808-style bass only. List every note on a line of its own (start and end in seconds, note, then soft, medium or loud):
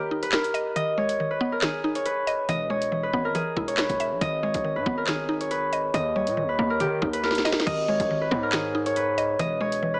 2.49 3.11 E1 loud
3.13 3.34 G#1 loud
3.57 3.88 E1 loud
3.89 4.13 E1 loud
4.11 4.21 B1 loud
4.21 4.53 G#1 loud
4.54 4.77 G#1 loud
4.76 4.86 G#2 loud
4.86 5.90 G#1 loud
5.94 6.28 D#2 loud
6.27 6.44 A#2 loud
6.43 6.58 D#2 loud
6.59 6.82 D#2 loud
6.80 7.01 D#3 loud
7.02 7.43 D#2 loud
7.67 7.98 G#1 loud
8.00 8.30 G#1 loud
8.32 9.35 G#2 loud
9.39 10.00 E1 loud